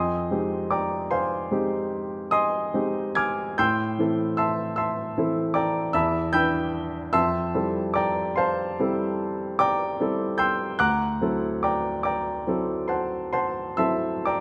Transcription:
Already playing: F2 D#5 G#5 C6 D#6
0.31 G#3 C4 D#4 G4
0.71 D5 G5 A#5 D6
1.11 C5 F5 G#5 C6
1.51 G#3 C4 D#4 G4
2.31 D#5 G#5 C6 D#6
2.74 G#3 C4 D#4 G4
3.15 G#5 D6 F6 G#6
3.58 A2 G5 C6 E6 G6
3.99 E3 C4 E4 A4
4.37 E5 A5 C6 E6
4.76 E5 A5 C6 E6
5.18 E3 C4 E4 A4
5.54 D5 G5 A#5 D6
5.93 E2 E5 A5 B5 E6
6.33 E3 D4 E4 B4 G5 B5 E6 G6
7.13 F2 E5 A5 C6 E6
7.55 G3 C4 E4 A4
7.94 D5 G5 A#5 D6
8.36 C5 F5 A5 C6
8.80 G3 C4 E4 A4
9.59 D5 G5 A#5 D6
10.00 G3 C4 E4 A4
10.38 G5 C6 E6 G6
10.79 D2 F#5 A#5 D6 F#6
11.21 F#3 C4 E4 A4
11.63 D5 G5 A#5 D6
12.03 D5 G5 A#5 D6
12.47 F#3 C4 E4 A4
12.88 C5 F#5 A5 C6
13.33 C5 F#5 A5 C6
13.77 F#3 C4 E4 A4 E5 A5 C6 E6
14.26 D5 G5 A#5 D6

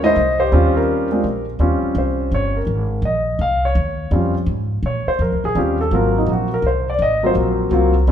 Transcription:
Already playing: D#2
0.03 G#3 A#3 D#4 E4 C5 D#5
0.16 C2
0.40 G4 C5
0.52 D#2 G3 C4 C#4 F4
0.77 G4 A#4
1.12 G#3 C4 D4 F4
1.24 A#1
1.59 D#2 G3 C4 C#4 F4
1.83 muted upright bass stroke
1.95 C2 C5
2.32 G1 C#5
2.57 A#4
2.67 G#1
3.02 A#1 D#5
3.39 C2 F5
3.65 C#5
3.75 D#2
4.11 F2 G3 C4 C#4 F4
4.46 G#2
4.83 A#2 C#5
5.07 C5, muted upright bass stroke
5.19 F2 A#4
5.32 C#2
5.44 A#1 G#4
5.55 D#2 G3 C4 C#4 F4 G4
5.81 A4
5.91 G#1 F#3 A#3 C4 F4 A#4
6.18 D#4
6.26 A#1
6.32 F#4
6.54 A#4
6.62 C2
6.67 C5
6.90 D5
6.99 G#1 D#5
7.23 F#3 A#3 C4 F4 C5
7.35 A#1
7.71 C2 F#3 A#3 C4 F4
8.07 D#2 G3 C4 C#4

